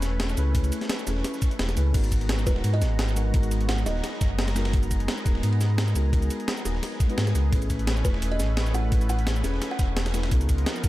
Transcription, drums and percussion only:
0.02 snare, closed hi-hat, ride, shaker
0.20 snare, closed hi-hat, ride
0.29 snare, shaker
0.37 closed hi-hat, ride, shaker
0.55 kick, closed hi-hat, ride
0.64 closed hi-hat, shaker
0.72 closed hi-hat, ride, shaker
0.81 snare, closed hi-hat
0.90 snare, closed hi-hat, ride
0.99 shaker
1.07 snare, closed hi-hat, ride, shaker
1.17 snare
1.24 snare, closed hi-hat, open hi-hat
1.34 snare, shaker
1.42 kick, snare, closed hi-hat, ride, shaker
1.51 closed hi-hat
1.59 snare, closed hi-hat, ride
1.69 snare, shaker
1.77 snare, closed hi-hat, ride, shaker
1.94 kick, closed hi-hat, crash, ride
2.04 closed hi-hat, shaker
2.12 kick, closed hi-hat, ride, shaker
2.21 closed hi-hat
2.29 snare, closed hi-hat, ride
2.38 snare, shaker
2.47 kick, snare, closed hi-hat, ride, shaker
2.56 snare
2.64 closed hi-hat, ride
2.74 ride
2.82 snare, closed hi-hat, ride, shaker
2.99 snare, closed hi-hat, ride
3.08 snare, shaker
3.17 closed hi-hat, ride, shaker
3.34 kick, closed hi-hat, ride
3.43 closed hi-hat, shaker
3.51 closed hi-hat, ride, shaker
3.61 closed hi-hat
3.69 snare, closed hi-hat, ride
3.78 shaker
3.86 snare, closed hi-hat, ride, shaker
3.96 snare
4.04 snare, closed hi-hat, ride
4.13 snare
4.21 kick, snare, closed hi-hat, ride, shaker
4.39 snare, closed hi-hat, ride
4.48 snare, ride, shaker
4.56 snare, closed hi-hat, ride, shaker
4.65 snare, ride
4.73 kick, closed hi-hat, ride
4.83 closed hi-hat, shaker
4.91 kick, closed hi-hat, ride, shaker
5.00 closed hi-hat
5.08 snare, closed hi-hat, ride
5.18 snare, shaker
5.26 kick, snare, closed hi-hat, ride, shaker
5.35 snare
5.43 closed hi-hat, ride
5.53 ride
5.61 snare, closed hi-hat, ride, shaker
5.78 snare, closed hi-hat, ride
5.88 snare, shaker
5.96 closed hi-hat, ride, shaker
6.13 kick, closed hi-hat, ride
6.22 closed hi-hat, shaker
6.30 closed hi-hat, ride, shaker
6.40 closed hi-hat
6.48 snare, closed hi-hat, ride
6.57 shaker
6.65 snare, closed hi-hat, ride, shaker
6.75 snare
6.83 snare, closed hi-hat, open hi-hat
6.92 snare
7.00 kick, snare, closed hi-hat, ride, shaker
7.10 closed hi-hat
7.18 snare, closed hi-hat, ride
7.27 snare, shaker
7.35 snare, closed hi-hat, ride, shaker
7.53 kick, closed hi-hat, ride
7.62 closed hi-hat, shaker
7.70 kick, closed hi-hat, ride, shaker
7.79 closed hi-hat
7.87 snare, closed hi-hat, ride
7.97 snare, shaker
8.05 kick, snare, closed hi-hat, ride, shaker
8.14 snare
8.22 closed hi-hat, ride
8.32 ride
8.40 snare, closed hi-hat, ride, shaker
8.57 snare, closed hi-hat, ride
8.66 snare, shaker
8.74 closed hi-hat, ride, shaker
8.92 kick, closed hi-hat, ride
9.01 closed hi-hat, shaker
9.09 closed hi-hat, ride, shaker
9.19 closed hi-hat
9.27 snare, closed hi-hat, ride
9.36 shaker
9.44 snare, closed hi-hat, ride, shaker
9.54 snare
9.62 snare, closed hi-hat, ride
9.71 snare
9.79 kick, snare, closed hi-hat, ride, shaker
9.97 snare, closed hi-hat, ride
10.06 snare, ride, shaker
10.14 snare, closed hi-hat, ride, shaker
10.23 snare, ride
10.31 kick, closed hi-hat, ride
10.41 closed hi-hat, shaker
10.49 kick, closed hi-hat, ride, shaker
10.58 closed hi-hat
10.66 snare, closed hi-hat, ride
10.76 snare, shaker
10.84 kick, snare, closed hi-hat, ride, shaker

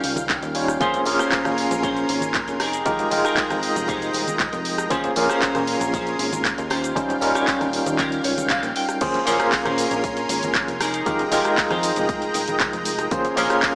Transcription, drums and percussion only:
0.04 open hi-hat, tambourine
0.16 closed hi-hat, tambourine, high conga, shaker
0.29 kick, clap, closed hi-hat, tambourine, shaker
0.43 closed hi-hat, tambourine, shaker
0.55 open hi-hat, tambourine
0.68 cross-stick, closed hi-hat, tambourine, shaker
0.81 kick, closed hi-hat, tambourine, high conga, shaker
0.93 closed hi-hat, tambourine, low conga, shaker
1.05 open hi-hat, tambourine
1.19 cross-stick, closed hi-hat, tambourine, shaker
1.32 kick, clap, closed hi-hat, tambourine, shaker
1.45 cross-stick, closed hi-hat, tambourine, high conga, shaker
1.58 open hi-hat, tambourine
1.71 closed hi-hat, tambourine, low conga, shaker
1.83 kick, closed hi-hat, tambourine, shaker
1.96 closed hi-hat, tambourine, shaker
2.09 open hi-hat, tambourine
2.21 closed hi-hat, tambourine, high conga, shaker
2.34 kick, clap, closed hi-hat, tambourine, shaker
2.47 closed hi-hat, tambourine, shaker
2.60 cross-stick, open hi-hat, tambourine
2.73 closed hi-hat, tambourine, shaker
2.86 kick, closed hi-hat, tambourine, high conga, shaker
2.99 closed hi-hat, tambourine, low conga, shaker
3.11 open hi-hat, tambourine
3.25 cross-stick, closed hi-hat, tambourine, shaker
3.37 kick, clap, closed hi-hat, tambourine, shaker
3.50 cross-stick, closed hi-hat, tambourine, high conga, shaker
3.63 open hi-hat, tambourine
3.75 closed hi-hat, tambourine, low conga, shaker
3.88 kick, closed hi-hat, tambourine, shaker
4.01 closed hi-hat, tambourine, shaker
4.13 open hi-hat, tambourine
4.27 closed hi-hat, tambourine, high conga, shaker
4.39 kick, clap, closed hi-hat, tambourine, shaker
4.52 closed hi-hat, tambourine, shaker
4.65 open hi-hat, tambourine
4.78 cross-stick, closed hi-hat, tambourine, shaker
4.91 kick, closed hi-hat, tambourine, high conga, shaker
5.04 closed hi-hat, tambourine, low conga, shaker
5.16 open hi-hat, tambourine
5.30 cross-stick, tambourine, shaker
5.42 kick, clap, closed hi-hat, tambourine, shaker
5.55 cross-stick, closed hi-hat, tambourine, high conga, shaker
5.67 open hi-hat, tambourine
5.80 closed hi-hat, tambourine, low conga, shaker
5.94 kick, closed hi-hat, tambourine, shaker
6.06 closed hi-hat, tambourine, shaker
6.19 open hi-hat, tambourine
6.32 closed hi-hat, tambourine, high conga, shaker
6.45 kick, clap, closed hi-hat, tambourine, shaker
6.58 closed hi-hat, tambourine, shaker
6.70 cross-stick, open hi-hat, tambourine
6.83 closed hi-hat, tambourine, shaker
6.96 kick, closed hi-hat, tambourine, high conga, shaker
7.09 closed hi-hat, tambourine, low conga, shaker
7.21 open hi-hat, tambourine
7.34 cross-stick, closed hi-hat, tambourine, shaker
7.47 kick, clap, closed hi-hat, tambourine, shaker
7.61 cross-stick, closed hi-hat, tambourine, high conga, shaker
7.73 open hi-hat, tambourine
7.86 closed hi-hat, tambourine, low conga, shaker
7.99 kick, clap, closed hi-hat, tambourine, shaker
8.12 closed hi-hat, tambourine, shaker
8.24 open hi-hat, tambourine
8.37 closed hi-hat, tambourine, high conga, shaker
8.50 kick, clap, closed hi-hat, tambourine, shaker
8.63 closed hi-hat, tambourine, shaker
8.76 open hi-hat, tambourine
8.89 cross-stick, closed hi-hat, tambourine, shaker
9.01 kick, closed hi-hat, crash, tambourine, high conga, shaker
9.14 closed hi-hat, tambourine, low conga, shaker
9.27 open hi-hat, tambourine, shaker
9.40 cross-stick, closed hi-hat, tambourine, shaker
9.52 kick, clap, open hi-hat, tambourine, shaker
9.65 cross-stick, closed hi-hat, tambourine, high conga, shaker
9.78 open hi-hat, tambourine, shaker
9.91 closed hi-hat, tambourine, low conga, shaker
10.04 kick, closed hi-hat, tambourine, shaker
10.17 closed hi-hat, tambourine, shaker
10.29 open hi-hat, tambourine, shaker
10.43 closed hi-hat, tambourine, high conga, shaker
10.55 kick, clap, closed hi-hat, tambourine, shaker
10.68 closed hi-hat, tambourine, shaker
10.80 cross-stick, open hi-hat, tambourine, shaker
10.94 closed hi-hat, tambourine, shaker
11.06 kick, closed hi-hat, tambourine, high conga, shaker
11.19 closed hi-hat, tambourine, low conga, shaker
11.32 open hi-hat, tambourine, shaker
11.44 cross-stick, closed hi-hat, tambourine, shaker
11.57 kick, clap, open hi-hat, tambourine, shaker
11.70 cross-stick, closed hi-hat, tambourine, high conga, shaker
11.83 open hi-hat, tambourine, shaker
11.96 closed hi-hat, tambourine, low conga, shaker
12.09 kick, closed hi-hat, tambourine, shaker
12.22 closed hi-hat, tambourine, shaker
12.34 open hi-hat, tambourine, shaker
12.48 closed hi-hat, tambourine, high conga, shaker
12.60 kick, clap, closed hi-hat, tambourine, shaker
12.73 closed hi-hat, tambourine, shaker
12.85 open hi-hat, tambourine, shaker
12.99 cross-stick, closed hi-hat, tambourine, shaker
13.11 kick, closed hi-hat, tambourine, high conga, shaker
13.25 closed hi-hat, tambourine, low conga, shaker
13.37 open hi-hat, tambourine, shaker
13.50 cross-stick, closed hi-hat, tambourine, shaker
13.62 kick, clap, open hi-hat, tambourine, shaker

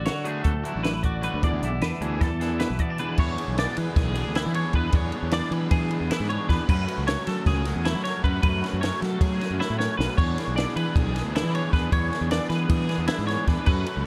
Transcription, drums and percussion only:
0.05 snare, closed hi-hat
0.25 closed hi-hat
0.44 kick, closed hi-hat
0.65 closed hi-hat
0.84 snare, closed hi-hat
1.03 kick, closed hi-hat
1.23 closed hi-hat
1.43 kick, closed hi-hat
1.63 closed hi-hat
1.81 snare, closed hi-hat
2.02 closed hi-hat
2.21 kick, snare, closed hi-hat
2.41 snare, closed hi-hat
2.60 snare, closed hi-hat
2.79 kick, closed hi-hat
2.98 closed hi-hat
3.18 kick, crash
3.38 ride
3.58 snare, ride
3.77 ride
3.96 kick, snare, ride
4.15 ride
4.35 snare, ride
4.54 ride
4.73 kick, ride
4.92 kick, ride
5.12 ride
5.31 snare, ride
5.52 ride
5.71 kick, ride
5.91 ride
6.11 snare, ride
6.30 ride
6.49 kick, snare, ride
6.69 kick, crash
6.88 ride
7.08 snare, ride
7.27 snare, ride
7.46 kick, snare, ride
7.65 snare, ride
7.85 snare, ride
8.05 snare, ride
8.24 kick, ride
8.43 kick, ride
8.64 snare, ride
8.83 snare, ride
9.02 snare, ride
9.21 kick, ride
9.41 snare, ride
9.61 snare
9.80 snare
10.00 snare
10.18 kick, crash
10.38 snare, ride
10.57 snare, ride
10.77 ride
10.96 kick, ride
11.16 snare, ride
11.36 snare, ride
11.55 ride
11.73 kick, snare, ride
11.92 kick, ride
12.13 snare, ride
12.31 snare, ride
12.50 snare, ride
12.69 kick, ride
12.89 snare, ride
13.08 snare, ride
13.28 snare, ride
13.47 kick, snare, ride
13.66 kick, crash
13.86 ride

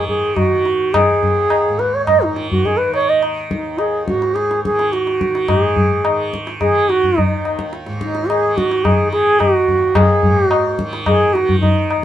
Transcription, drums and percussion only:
0.08 tabla ge
0.37 tabla na, tabla ge
0.65 tabla te
0.94 tabla na, tabla ge
1.23 tabla ge
1.50 tabla na
1.79 tabla te
2.07 tabla na, tabla ge
2.36 tabla te
2.52 tabla ge
2.65 tabla tin, tabla ge
2.94 tabla na
3.23 tabla na
3.51 tabla ke
3.79 tabla na
4.08 tabla ke
4.22 tabla te
4.36 tabla te
4.51 tabla te
4.65 tabla ke
4.79 tabla te
4.93 tabla te
5.07 tabla te
5.21 tabla ke
5.35 tabla te
5.48 tabla na, tabla ge
5.76 tabla ge
6.05 tabla na
6.33 tabla ke
6.47 tabla te
6.61 tabla na, tabla ge
6.89 tabla te
7.03 tabla ge
7.18 tabla tin, tabla ge
7.45 tabla na
7.59 tabla ke
7.73 tabla te
7.86 tabla te
8.01 tabla ke
8.15 tabla te
8.30 tabla na
8.58 tabla ke
8.71 tabla te
8.85 tabla na, tabla ge
9.13 tabla te
9.40 tabla na, tabla ge
9.68 tabla ge
9.95 tabla na, tabla ge
10.23 tabla ge
10.51 tabla na
10.79 tabla ke
10.93 tabla te
11.06 tabla na, tabla ge
11.35 tabla te
11.49 tabla ge
11.63 tabla tin, tabla ge
11.91 tabla na

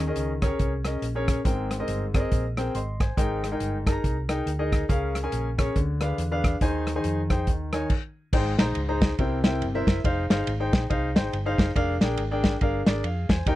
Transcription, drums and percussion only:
0.16 closed hi-hat
0.42 kick, cross-stick, closed hi-hat
0.59 kick, closed hi-hat
0.85 cross-stick, closed hi-hat
1.02 closed hi-hat
1.28 kick, cross-stick, closed hi-hat
1.45 kick, closed hi-hat
1.71 cross-stick, closed hi-hat
1.88 closed hi-hat
2.14 kick, cross-stick, closed hi-hat
2.32 kick, closed hi-hat
2.57 cross-stick, closed hi-hat
2.75 closed hi-hat
3.00 kick, cross-stick, closed hi-hat
3.17 kick, closed hi-hat
3.44 cross-stick, closed hi-hat
3.60 closed hi-hat
3.87 kick, cross-stick, closed hi-hat
4.04 kick, closed hi-hat
4.29 cross-stick, closed hi-hat
4.47 closed hi-hat
4.72 kick, cross-stick, closed hi-hat
4.89 kick, closed hi-hat
5.15 cross-stick, closed hi-hat
5.32 closed hi-hat
5.59 kick, cross-stick, closed hi-hat
5.76 kick, closed hi-hat
6.01 cross-stick, closed hi-hat
6.18 closed hi-hat
6.44 kick, cross-stick, closed hi-hat
6.61 kick, closed hi-hat
6.87 cross-stick, closed hi-hat
7.04 closed hi-hat
7.30 kick, cross-stick, closed hi-hat
7.47 kick, closed hi-hat
7.73 cross-stick, closed hi-hat
7.90 kick, crash
8.33 kick, crash
8.59 snare, ride bell
8.75 ride bell
9.01 kick, snare, ride bell
9.19 kick, ride bell
9.44 snare, ride bell
9.62 ride bell
9.87 kick, snare, ride bell
10.04 kick, ride bell
10.30 snare, ride bell
10.47 ride bell
10.73 kick, snare, ride bell
10.90 kick, ride bell
11.16 snare, ride bell
11.33 ride bell
11.58 kick, snare, ride bell
11.76 kick, ride bell
12.01 snare, ride bell
12.17 ride bell
12.44 kick, snare, ride bell
12.61 kick, ride bell
12.87 snare, ride bell
13.04 ride bell
13.29 kick, snare, ride bell
13.46 kick, ride bell

